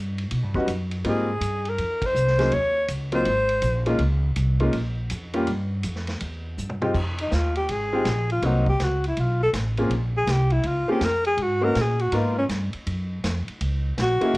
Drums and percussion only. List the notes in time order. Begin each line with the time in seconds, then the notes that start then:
0.18 ride
0.31 ride
0.55 kick
0.68 hi-hat pedal, ride
0.91 ride
1.04 ride
1.41 hi-hat pedal, ride
1.65 ride
1.78 ride
2.01 kick, ride
2.15 hi-hat pedal
2.27 snare
2.38 snare, ride
2.51 ride
2.88 hi-hat pedal, ride
3.12 ride
3.25 ride
3.49 ride
3.62 hi-hat pedal, ride
3.86 ride
3.99 ride
4.36 hi-hat pedal, ride
4.60 ride
4.73 ride
5.10 hi-hat pedal, ride
5.34 ride
5.47 ride
5.83 hi-hat pedal, ride
5.96 snare
6.07 snare, ride
6.21 ride
6.58 hi-hat pedal
6.69 mid tom
6.82 mid tom
6.95 kick, crash
7.18 ride
7.31 snare, hi-hat pedal
7.55 ride
7.69 ride
8.05 snare, hi-hat pedal, ride
8.30 ride
8.42 ride
8.66 kick
8.80 snare, hi-hat pedal, ride
9.04 ride
9.17 ride
9.53 snare, hi-hat pedal, ride
9.77 ride
9.91 ride
10.27 snare, hi-hat pedal, ride
10.50 ride
10.64 ride
11.01 snare, hi-hat pedal, ride
11.25 ride
11.38 ride
11.75 snare, hi-hat pedal, ride
11.99 ride
12.12 ride
12.49 snare, hi-hat pedal, ride
12.73 ride
12.86 ride
13.24 snare, hi-hat pedal, ride
13.48 ride
13.60 ride
13.97 snare, hi-hat pedal, ride
14.21 ride
14.34 ride